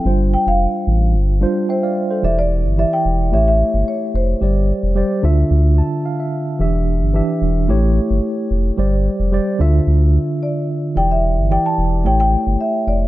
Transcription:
<<
  \new Staff \with { instrumentName = "Marimba" } { \time 4/4 \key d \minor \tempo 4 = 110 g''8 g''16 f''4 r4 r16 c''4 | e''16 d''8. e''16 g''8. e''16 e''8. cis''8 c''8~ | c''4 r2. | r1 |
r2. d''4 | g''16 e''8. g''16 a''8. g''16 g''8. e''8 d''8 | }
  \new Staff \with { instrumentName = "Tine electric piano" } { \time 4/4 \key d \minor << { r2. <e'' g''>16 <d'' f''>8 <a' c''>16~ | <a' c''>16 r2. r8. | r2 r8 a''8 f''16 e''8. | r1 |
r1 | r1 | } \\ { <g d' f' c''>4. r4 <g d' f' c''>4 r8 | <e e' g' d''>4 <e e' g' d''>4 <a e' g' cis''>4. r8 | <g g' c'' d''>4 <g g' c'' d''>8 <d d' f' e''>4. r4 | <e d' g' e''>4 <e d' g' e''>4 <a e' g' cis''>4. r8 |
<g g' c'' d''>4 <g g' c'' d''>8 <d d' f' e''>4. r4 | <e e' g' d''>4 <e e' g' d''>4 <a e' g' cis''>4. r8 | } >> }
  \new Staff \with { instrumentName = "Analog synth bass" } { \clef bass \time 4/4 \key d \minor g,,8. f,,8 r16 a,,8 g,,8. r4 r16 | e,,8. g,,8 r16 e,,8 a,,8. g,,16 r8 f,,8 | g,,8. f,,8 r16 d,8 d,8. r4 r16 | e,,8. g,,8 r16 e,,8 a,,8. g,,16 r8 f,,8 |
g,,8. f,,8 r16 d,8 d,8. r4 r16 | e,,8. g,,8 r16 e,,8 a,,8. g,,16 r8 f,,8 | }
>>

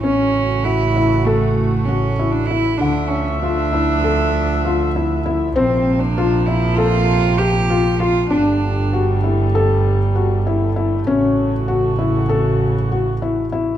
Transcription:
<<
  \new Staff \with { instrumentName = "Felt piano" } { \time 9/8 \key d \lydian \tempo 4. = 65 cis'4 fis'8 e'8 a'4 fis'8 e'8 e'8 | d4 f'8 e'8 a'4 f'8 e'8 e'8 | c'4 f'8 e'8 a'4 g'8 f'8 f'8 | d'4 fis'8 e'8 a'4 fis'8 e'8 e'8 |
cis'4 fis'8 e'8 a'4 fis'8 e'8 e'8 | }
  \new Staff \with { instrumentName = "Cello" } { \time 9/8 \key d \lydian cis'4 e'4 a4 cis'8. d'16 e'8 | d'8 cis'8 d'2. r8 | c'8. d'8. e'8 f'4 g'4 f'8 | d'4. r2. |
r1 r8 | }
  \new Staff \with { instrumentName = "String section" } { \clef bass \time 9/8 \key d \lydian << { <cis fis'>1~ <cis fis'>8 | <d e''>1~ <d e''>8 | <c f>1~ <c f>8 | <d g>1~ <d g>8 |
<cis fis'>1~ <cis fis'>8 | } \\ { a1~ a8 | f1~ f8 | bes1~ bes8 | a1~ a8~ |
a1~ a8 | } >> }
  \new Staff \with { instrumentName = "Double bass" } { \clef bass \time 9/8 \key d \lydian a,,1~ a,,8 | d,1~ d,8 | bes,,1~ bes,,8 | g,,1~ g,,8 |
a,,1~ a,,8 | }
>>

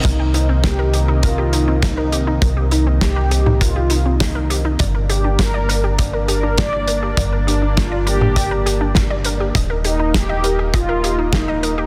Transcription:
<<
  \new Staff \with { instrumentName = "Synth arpeggio sound" } { \time 4/4 \key c \minor \tempo 4 = 101 bes'16 g'16 ees'16 c'16 bes16 bes'16 g'16 ees'16 bes'16 g'16 ees'16 c'16 bes16 bes'16 g'16 ees'16 | bes'16 g'16 ees'16 c'16 bes16 bes'16 g'16 ees'16 bes'16 g'16 ees'16 c'16 bes16 bes'16 g'16 ees'16 | d''16 bes'16 g'16 d'16 bes16 d''16 bes'16 g'16 d''16 bes'16 g'16 d'16 bes16 d''16 bes'16 g'16 | d''16 bes'16 g'16 d'16 bes16 d''16 bes'16 g'16 d''16 bes'16 g'16 d'16 bes16 d''16 bes'16 g'16 |
ees''16 bes'16 g'16 ees'16 bes16 ees''16 bes'16 g'16 ees''16 bes'16 g'16 ees'16 bes16 ees''16 bes'16 g'16 | }
  \new Staff \with { instrumentName = "Analog polysynth" } { \time 4/4 \key c \minor r8 ees'8 g'4 f'4 ees'8. r16 | r8 ees'8 g'4 r4 ees'8. r16 | r8 g'8 bes'4 r8 bes'8 d''4 | r8 d'8 f'8 g'4. r4 |
r8 ees'8 g'4 f'4 ees'8. r16 | }
  \new Staff \with { instrumentName = "Analog synth pad" } { \time 4/4 \key c \minor <c ees bes ees'>1~ | <c ees bes ees'>1 | <bes d'>1~ | <bes d'>1 |
<bes ees'>1 | }
  \new Staff \with { instrumentName = "Analog synth bass" } { \clef bass \time 4/4 \key c \minor c,1 | c,1 | g,,1 | g,,1 |
ees,,1 | }
  \new DrumStaff \with { instrumentName = "Drums" } \drummode { \time 4/4 <hh bd>8 hh8 <hh bd sn>8 hh8 <hh bd>8 hh8 <hh bd sn>8 hh8 | <hh bd>8 hh8 <hh bd sn>8 hh16 toml16 <hh bd>8 hh8 <hh bd sn>8 hh8 | <hh bd>8 hh8 <hh bd sn>8 hh8 <hh bd>8 hh8 <hh bd sn>8 hh8 | <hh bd>8 hh8 <hh bd sn>8 hh16 toml16 <hh bd>8 hh8 <hh bd sn>8 hh8 |
<hh bd>8 hh8 <hh bd sn>8 hh8 <hh bd>8 hh8 <hh bd sn>8 hh8 | }
>>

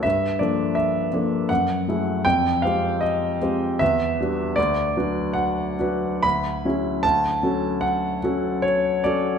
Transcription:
\new Staff \with { instrumentName = "Grand piano" } { \time 3/4 \key d \major \tempo 4 = 77 << { e''8 d''8 e''4 fis''4 | g''8 f''8 ees''4 e''4 | d''4 fis''4 b''4 | a''4 fis''4 cis''8 d''8 | } \\ { g,8 <f bes d' a'>4 <f bes d' a'>8 fis,8 <fis a e' gis'>8 | f,8 <aes c' f' g'>4 <aes c' f' g'>8 e,8 <g d' fis' b'>8 | d,8 <fis d' fis' b'>4 <fis d' fis' b'>8 d,8 <fis cis' e' gis'>8 | d,8 <fis cis' fis' a'>4 <fis cis' fis' a'>4 <fis cis' fis' a'>8 | } >> }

